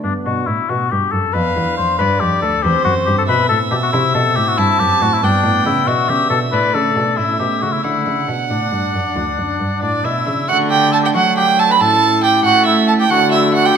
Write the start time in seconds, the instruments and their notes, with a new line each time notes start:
0.00 pipe organ B3 D4, oboe D4
0.04 cello G2, pipe organ G2
0.26 pipe organ B2, cello B2, oboe F#4
0.47 cello A2, pipe organ A2, oboe E4
0.69 cello B2, pipe organ B2, oboe F#4
0.91 pipe organ G2, cello G2, oboe G4
1.12 pipe organ F#2, cello F#2, oboe A4
1.32 cello F2, pipe organ F2 B3 D4, oboe B4, violin F5
1.56 cello E2, pipe organ E2
1.77 cello F2, pipe organ F2, oboe C5
1.99 pipe organ G2, cello G2, oboe B4, violin D5
2.20 pipe organ F2, cello F2, oboe G4
2.42 pipe organ D2, cello D2, oboe A4
2.60 pipe organ E2 C4, oboe G4
2.64 cello E2, violin C5
2.85 pipe organ F#2, cello F#2, oboe F#4
3.06 pipe organ G2, cello G2, oboe G4
3.18 oboe A4
3.28 pipe organ B2, cello B2, oboe B4, violin E5
3.49 pipe organ A2, cello A2, oboe A4
3.71 pipe organ B2, cello B2, oboe G4
3.83 oboe F#4
3.90 pipe organ C3 C4, cello C3, oboe E4
4.15 pipe organ B2, cello B2, oboe A4
4.36 pipe organ A2, cello A2, oboe G4
4.48 oboe F#4
4.58 pipe organ G2, cello G2, oboe E4, violin A5
4.79 pipe organ F#2, cello F#2, oboe G4
5.01 pipe organ A2, cello A2, oboe F#4
5.14 oboe E4
5.19 pipe organ G2 B3 D4, cello G2, violin G5
5.23 oboe D4
5.44 pipe organ A2, cello A2
5.65 pipe organ C#3, cello C#3, oboe E4
5.87 pipe organ B2, cello B2, oboe F#4, violin E5
6.09 pipe organ C#3, cello C#3, oboe G4
6.30 pipe organ B2, cello B2, oboe A4
6.49 pipe organ A2 A3 D4, cello A2, oboe B4, violin D5
6.74 pipe organ C#3, cello C#3, oboe A4
6.96 pipe organ B2, cello B2
7.13 pipe organ A3 C#4
7.17 pipe organ A2, cello A2, oboe E4, violin E5
7.39 pipe organ B2, cello B2, oboe G4
7.61 pipe organ C#3, cello C#3, oboe F#4
7.73 oboe E4
7.80 pipe organ D3 A3 D4, cello D3, oboe E4, violin F#5
8.06 pipe organ C#3, cello C#3
8.28 pipe organ B2, cello B2
8.50 pipe organ A2, cello A2, oboe D4
8.72 cello G2, pipe organ G2
8.94 pipe organ F#2, cello F#2
9.16 pipe organ D2, cello D2
9.38 cello F#2, pipe organ F#2
9.60 cello G2, pipe organ G2
9.82 cello A2, pipe organ A2, oboe D4, violin D5
10.04 pipe organ B2, cello B2, oboe E4, violin E5
10.27 cello C#3, pipe organ C#3
10.46 cello D3, pipe organ D3 A3 D4, oboe F#4, violin F#5
10.70 oboe G4, violin G5
10.93 oboe A4, violin A5
11.03 oboe G4, violin G5
11.14 cello F#3, pipe organ F#3, oboe F#4, violin F#5
11.37 oboe G4, violin G5
11.58 oboe A4, violin A5
11.70 oboe B4, violin B5
11.77 cello A2, pipe organ A2 C#4 E4, oboe A4, violin A5
12.23 oboe G4, violin G5
12.44 pipe organ A3, cello A3, oboe F#4, violin F#5
12.66 oboe E4, violin E5
12.88 oboe A4, violin A5
13.00 oboe G4, violin G5
13.06 pipe organ A3 D4 F#4, violin F#5
13.10 pipe organ D3, cello D3, oboe F#4
13.31 oboe E4, violin E5
13.54 oboe F#4, violin F#5
13.65 oboe G4, violin G5